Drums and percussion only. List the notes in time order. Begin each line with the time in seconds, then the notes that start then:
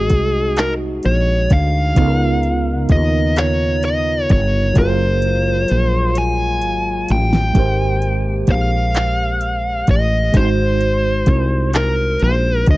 0.10 kick, closed hi-hat
0.57 clap, closed hi-hat
1.03 closed hi-hat
1.50 kick, closed hi-hat
1.96 kick, closed hi-hat
2.43 closed hi-hat
2.89 kick, closed hi-hat
3.36 clap, closed hi-hat
3.83 closed hi-hat
4.29 kick, closed hi-hat
4.75 kick, closed hi-hat
5.22 closed hi-hat
5.68 closed hi-hat
6.15 closed hi-hat
6.62 closed hi-hat
7.08 closed hi-hat
7.33 snare
7.55 kick, closed hi-hat
8.02 closed hi-hat
8.47 kick, closed hi-hat
8.94 clap, closed hi-hat
9.41 closed hi-hat
9.87 kick, closed hi-hat
10.34 kick, closed hi-hat
10.81 closed hi-hat
11.26 kick, closed hi-hat
11.73 clap, closed hi-hat
12.20 closed hi-hat
12.66 kick, closed hi-hat